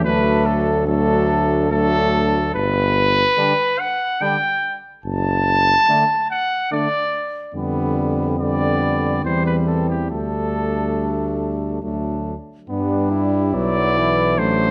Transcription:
0.04 2.54 D2 medium
0.04 0.87 F#3 medium
0.04 0.86 A3 medium
0.04 0.87 D4 medium
0.04 0.47 B4 loud
0.45 0.87 A4 loud
0.87 1.70 F#3 medium
0.87 1.70 A3 medium
0.87 1.69 D4 medium
0.87 1.69 A4 loud
1.71 2.53 F#3 medium
1.71 2.53 A3 medium
1.71 2.53 D4 medium
1.71 2.53 A4 loud
2.55 3.24 G1 loud
2.55 3.81 B4 loud
3.37 3.53 D3 medium
3.37 3.53 G3 medium
3.37 3.53 D4 medium
3.79 4.23 F#5 loud
4.20 4.37 D3 medium
4.20 4.37 G3 medium
4.20 4.36 D4 medium
4.20 4.77 G5 loud
5.05 5.74 F#1 loud
5.05 6.26 A5 loud
5.88 6.04 D3 medium
5.88 6.05 A3 medium
5.88 6.04 D4 medium
6.30 6.71 F#5 loud
6.71 6.87 D3 medium
6.71 6.88 A3 medium
6.71 6.87 D4 medium
6.71 7.54 D5 loud
7.54 9.21 F2 medium
7.54 8.36 D3 medium
7.54 8.36 G3 medium
7.54 8.35 B3 medium
8.39 9.26 D3 medium
8.39 9.23 G3 medium
8.39 9.23 B3 medium
8.39 9.21 D5 loud
9.24 10.12 E2 medium
9.24 10.10 E3 medium
9.24 10.09 G3 medium
9.24 10.08 C4 medium
9.24 9.46 C5 loud
9.46 9.56 B4 medium
9.67 9.88 A4 medium
9.90 10.10 G4 medium
10.10 11.82 D2 medium
10.10 11.84 G3 medium
10.10 11.80 A3 medium
10.10 11.80 D4 medium
10.10 11.80 A4 medium
11.82 12.36 D2 medium
11.82 12.37 F#3 medium
11.82 12.36 A3 medium
11.82 12.36 D4 medium
12.69 13.56 G2 medium
12.69 13.56 G3 medium
12.69 13.12 B3 medium
12.69 13.56 D4 loud
13.11 14.39 E4 medium
13.54 14.40 B1 medium
13.54 13.98 F#3 medium
13.54 14.38 B3 medium
13.54 14.40 D5 loud
13.97 14.40 E3 medium
14.38 14.71 A1 medium
14.38 14.71 F#3 medium
14.38 14.71 A3 medium
14.38 14.71 D4 medium
14.38 14.71 C5 loud

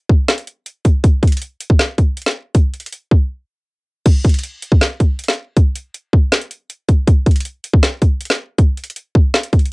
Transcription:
0.09 kick loud
0.28 snare loud
0.28 closed hi-hat medium
0.38 closed hi-hat medium
0.47 closed hi-hat medium
0.66 closed hi-hat medium
0.85 kick medium
0.85 closed hi-hat medium
1.04 kick loud
1.04 closed hi-hat medium
1.23 kick medium
1.23 closed hi-hat soft
1.27 closed hi-hat medium
1.32 closed hi-hat medium
1.37 closed hi-hat medium
1.42 closed hi-hat medium
1.60 closed hi-hat medium
1.70 kick loud
1.79 snare loud
1.79 closed hi-hat medium
1.98 kick medium
1.98 closed hi-hat medium
2.17 closed hi-hat medium
2.22 closed hi-hat medium
2.26 snare loud
2.26 closed hi-hat medium
2.31 closed hi-hat soft
2.55 kick loud
2.55 closed hi-hat medium
2.74 closed hi-hat soft
2.80 closed hi-hat medium
2.86 closed hi-hat medium
2.92 closed hi-hat medium
3.11 kick loud
4.06 kick loud
4.06 closed hi-hat medium
4.06 crash loud
4.25 kick medium
4.25 closed hi-hat soft
4.29 closed hi-hat medium
4.34 closed hi-hat medium
4.39 closed hi-hat medium
4.43 closed hi-hat medium
4.62 closed hi-hat medium
4.72 kick loud
4.81 snare loud
4.81 closed hi-hat medium
5.00 kick medium
5.00 closed hi-hat medium
5.19 closed hi-hat medium
5.24 closed hi-hat medium
5.28 snare loud
5.28 closed hi-hat medium
5.33 closed hi-hat soft
5.57 kick loud
5.57 closed hi-hat medium
5.76 closed hi-hat medium
5.94 closed hi-hat medium
6.13 kick loud
6.32 snare loud
6.32 closed hi-hat medium
6.41 closed hi-hat medium
6.51 closed hi-hat medium
6.70 closed hi-hat medium
6.89 kick loud
6.89 closed hi-hat medium
7.08 kick loud
7.08 closed hi-hat medium
7.26 kick medium
7.26 closed hi-hat soft
7.31 closed hi-hat medium
7.36 closed hi-hat medium
7.41 closed hi-hat medium
7.45 closed hi-hat medium
7.64 closed hi-hat medium
7.74 kick loud
7.83 snare loud
7.83 closed hi-hat medium
8.02 kick medium
8.02 closed hi-hat medium
8.21 closed hi-hat medium
8.25 closed hi-hat medium
8.30 snare loud
8.30 closed hi-hat medium
8.35 closed hi-hat soft
8.58 kick loud
8.58 closed hi-hat medium
8.77 closed hi-hat soft
8.84 closed hi-hat medium
8.90 closed hi-hat medium
8.96 closed hi-hat medium
9.15 kick loud
9.34 snare loud
9.34 closed hi-hat soft
9.43 closed hi-hat medium
9.53 kick medium
9.53 closed hi-hat soft
9.59 closed hi-hat soft
9.65 closed hi-hat medium

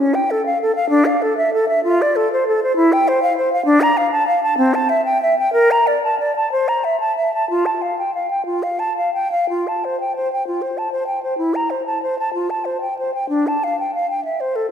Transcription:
0.00 0.16 C#4 medium
0.14 0.32 G5 medium
0.31 0.45 A4 medium
0.46 0.60 F5 medium
0.62 0.75 A4 medium
0.75 0.89 F5 medium
0.90 1.07 D4 loud
1.05 1.23 F5 medium
1.22 1.37 A4 medium
1.37 1.53 E5 medium
1.54 1.68 A4 medium
1.68 1.83 E5 medium
1.84 2.03 F4 medium
2.02 2.17 D5 medium
2.16 2.32 A4 medium
2.33 2.47 C5 medium
2.48 2.62 A4 medium
2.63 2.76 C5 medium
2.76 2.94 E4 medium
2.93 3.10 G5 medium
3.08 3.22 C5 medium
3.23 3.37 F5 medium
3.37 3.52 C5 medium
3.53 3.65 F5 medium
3.65 3.83 D4 loud
3.82 3.99 A#5 medium
3.97 4.11 F5 medium
4.12 4.27 A5 medium
4.27 4.43 F5 medium
4.43 4.57 A5 medium
4.58 4.76 C4 medium
4.74 4.91 A5 medium
4.89 5.04 E5 medium
5.05 5.21 G5 medium
5.22 5.38 E5 medium
5.39 5.53 G5 medium
5.53 5.73 A#4 loud
5.71 5.88 A#5 medium
5.87 6.02 D5 medium
6.04 6.19 A5 medium
6.20 6.35 D5 medium
6.36 6.51 A5 medium
6.52 6.70 C5 medium
6.68 6.86 A#5 medium
6.84 6.99 E5 medium
7.00 7.16 A5 medium
7.17 7.32 E5 medium
7.34 7.49 A5 medium
7.50 7.67 F4 medium
7.66 7.83 A5 medium
7.82 7.98 F5 medium
7.99 8.14 G5 medium
8.15 8.30 F5 medium
8.30 8.45 G5 medium
8.46 8.64 F4 medium
8.63 8.81 F5 medium
8.79 8.97 A5 medium
8.98 9.13 F5 medium
9.14 9.31 G5 medium
9.32 9.49 F5 medium
9.49 9.69 F4 medium
9.67 9.86 A5 soft
9.85 10.00 C5 medium
10.00 10.15 G5 soft
10.16 10.31 C5 medium
10.33 10.46 G5 medium
10.47 10.63 F4 medium
10.62 10.79 C5 soft
10.78 10.92 A5 soft
10.92 11.06 C5 medium
11.07 11.22 G5 soft
11.23 11.37 C5 soft
11.38 11.56 E4 medium
11.55 11.72 A#5 medium
11.70 11.86 C5 soft
11.86 12.02 A5 soft
12.03 12.18 C5 soft
12.19 12.33 A5 medium
12.34 12.52 F4 medium
12.50 12.67 A5 medium
12.65 12.81 C5 soft
12.81 12.97 G5 medium
12.99 13.14 C5 soft
13.14 13.29 G5 medium
13.29 13.49 D4 medium
13.47 13.65 A5 medium
13.64 13.79 F5 medium
13.80 13.94 G5 soft
13.95 14.09 F5 medium
14.10 14.24 G5 medium
14.25 14.42 E5 medium
14.40 14.57 C5 medium
14.56 14.70 A4 medium

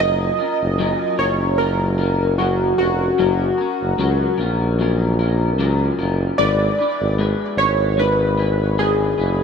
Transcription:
0.00 0.30 F#1 medium
0.00 0.38 F#3 medium
0.00 0.38 C#4 medium
0.00 0.39 F4 medium
0.00 0.37 A#4 medium
0.00 1.23 D#5 loud
0.39 0.78 C#4 soft
0.39 0.79 F4 soft
0.39 0.79 A#4 medium
0.62 0.94 F#1 medium
0.79 1.19 F#3 medium
0.79 1.19 C#4 medium
0.79 1.18 F4 medium
0.79 1.17 A#4 medium
1.18 2.74 F#1 medium
1.18 1.58 C#4 soft
1.18 1.59 F4 soft
1.18 1.58 A#4 medium
1.18 1.60 C#5 medium
1.58 1.98 F#3 medium
1.58 1.99 C#4 medium
1.58 1.98 F4 medium
1.58 2.34 A#4 medium
1.58 1.97 A#4 medium
1.98 2.38 C#4 soft
1.98 2.39 F4 soft
1.98 2.38 A#4 soft
2.38 2.78 F#3 medium
2.38 2.79 C#4 medium
2.38 2.77 F#4 medium
2.38 2.77 A#4 medium
2.78 3.10 F1 medium
2.78 3.18 C#4 soft
2.78 4.34 F#4 medium
2.78 3.18 A#4 soft
3.18 3.50 F#1 medium
3.18 3.58 F#3 medium
3.18 3.59 C#4 medium
3.18 3.57 A#4 medium
3.58 3.98 C#4 soft
3.58 3.98 A#4 medium
3.82 3.95 F#1 medium
3.98 4.30 C#2 medium
3.98 4.38 F#3 medium
3.98 4.39 C#4 medium
3.98 4.36 A#4 medium
4.38 5.59 A#1 medium
4.38 4.79 C#4 soft
4.38 4.78 F4 medium
4.38 4.78 A#4 medium
4.79 5.18 F#3 medium
4.79 5.19 C#4 medium
4.79 5.19 F4 medium
4.79 5.18 A#4 medium
5.19 5.58 C#4 soft
5.19 5.59 F4 soft
5.19 5.58 A#4 medium
5.58 5.90 C#2 medium
5.58 5.98 F#3 medium
5.58 5.99 C#4 medium
5.58 5.99 F4 medium
5.58 5.97 A#4 medium
5.97 6.29 F#1 medium
5.97 6.38 C#4 soft
5.97 6.39 F4 medium
5.97 6.38 A#4 medium
6.38 6.70 G#1 loud
6.38 6.78 G#3 medium
6.38 6.78 D4 medium
6.38 6.79 E4 medium
6.38 6.77 B4 medium
6.38 7.14 D5 loud
6.79 7.18 D4 soft
6.79 7.19 E4 soft
6.79 7.18 B4 medium
7.01 7.33 G#1 medium
7.19 7.58 G#3 medium
7.19 7.58 D4 medium
7.19 7.58 E4 medium
7.19 7.56 B4 medium
7.57 9.13 G#1 medium
7.57 7.97 D4 soft
7.57 7.98 E4 soft
7.57 7.98 B4 medium
7.57 7.99 C#5 loud
7.97 8.37 G#3 medium
7.97 8.38 D4 medium
7.97 8.38 E4 medium
7.97 8.81 B4 medium
7.97 8.36 B4 medium
8.38 8.78 D4 soft
8.38 8.78 E4 medium
8.38 8.77 B4 medium
8.78 9.18 G#3 medium
8.78 9.18 D4 medium
8.78 9.18 E4 medium
8.78 9.44 G#4 medium
8.78 9.17 B4 medium
9.18 9.44 F#1 medium
9.18 9.44 D4 soft
9.18 9.44 E4 medium
9.18 9.44 B4 medium

